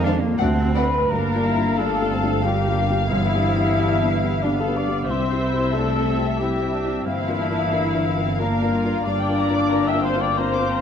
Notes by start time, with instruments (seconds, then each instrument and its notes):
Already playing: double bass section F2, felt piano F2 G#3 C4 F4
0.03 french horn section D3, viola section G#3, cello section D4, clarinet D4, violin section C5 F5
0.21 french horn section A#2, clarinet A#3, cello section A#3
0.39 double bass section D2, felt piano D2 A3 D4 F#4, viola section A3, clarinet C4, cello section C4, violin section D5 F#5, cor anglais F#5, flute A5
0.43 french horn section C3
0.75 viola section A3 B4, french horn section B4, violin section D5 F#5, flute B5
1.10 double bass section G1, cello section G2, felt piano G2, french horn section A#3, clarinet D4, violin section D4 F5, viola section A#4, cor anglais F5, flute A#5
1.34 felt piano G3 D4 F4
1.45 violin section E4
1.56 felt piano G3 D4 F4
1.77 felt piano G3 D4 F4, french horn section A3, violin section D4, viola section A4, flute A5
2.01 felt piano G3 D4 F4
2.11 violin section C4
2.22 felt piano G3 D4 F4
2.44 felt piano G3 D4 F4, french horn section G3, violin section A#3, clarinet D4, viola section G4, cor anglais F5, flute G5
2.67 felt piano G3 D4 F4
2.90 felt piano G3 D4 F4
3.09 timpani G2, felt piano G2, french horn section E3, clarinet B3, violin section B3, viola section E4, flute E5, cor anglais F5
3.34 felt piano B3 D4 G4
3.44 violin section C4
3.57 felt piano B3 D4 G4
3.76 felt piano B3 D4 G4, violin section D4
4.00 felt piano B3 D4 G4
4.08 violin section B3
4.22 felt piano B3 D4 G4
4.42 french horn section D3, clarinet B3, felt piano B3 D4 G4, viola section D4, flute D5, cor anglais F5
4.59 french horn section A3, viola section A4, flute A5
4.67 felt piano B3 D4 G4
4.77 french horn section D4, viola section D5, flute D6
4.87 felt piano B3 D4 G4
5.08 felt piano C2, double bass section C2, cello section C3, clarinet C4, violin section C4 E5, french horn section C4, viola section C5, cor anglais E5, flute C6
5.32 felt piano C4 E4 G4
5.41 violin section E4
5.52 felt piano C4 E4 G4
5.72 french horn section A3, felt piano C4 E4 G4, violin section D4, viola section A4
5.77 flute A5
5.96 felt piano C4 E4 G4
6.06 violin section C4
6.18 felt piano C4 E4 G4
6.39 french horn section G3, felt piano C4 E4 G4, clarinet C4, violin section E4, viola section G4, cor anglais E5, flute G5
6.62 felt piano C4 E4 G4
6.73 violin section D4
6.84 felt piano C4 E4 G4
7.04 double bass section G1, cello section G2, felt piano G2, french horn section E3, clarinet A#3, violin section C4 F5, viola section E4, flute E5, cor anglais F5
7.27 felt piano D4 F4 A#4
7.39 violin section D4
7.49 felt piano D4 F4 A#4
7.71 violin section A#3, felt piano D4 F4 A#4
7.93 felt piano D4 F4 A#4
8.05 violin section C4
8.16 felt piano D4 F4 A#4
8.38 clarinet A#3, french horn section A#3, felt piano D4 F4 A#4, violin section D4, viola section A#4, cor anglais F5, flute A#5
8.62 felt piano D4 F4 A#4
8.73 violin section F4
8.84 felt piano D4 F4 A#4
9.04 double bass section G1, cello section G2, felt piano G2, clarinet A#3, violin section D4 F5, french horn section D4, viola section D5, cor anglais F5, flute D6
9.20 violin section G5
9.28 felt piano D4 F4 A#4
9.38 violin section A#5
9.49 felt piano D4 F4 A#4
9.55 violin section D6
9.70 felt piano D4 F4 A#4, violin section A#5
9.86 french horn section E4, viola section E5, violin section G5, flute E6
9.93 felt piano D4 F4 A#4
10.02 french horn section C4, viola section C5, violin section F5, flute C6
10.16 felt piano D4 F4 A#4
10.20 french horn section D4, viola section D5, violin section G5, flute D6
10.37 violin section A#3 A#5, french horn section C4, felt piano D4 F4 A#4, viola section C5, flute C6
10.54 violin section D6
10.59 felt piano D4 F4 A#4
10.68 violin section C4 A#5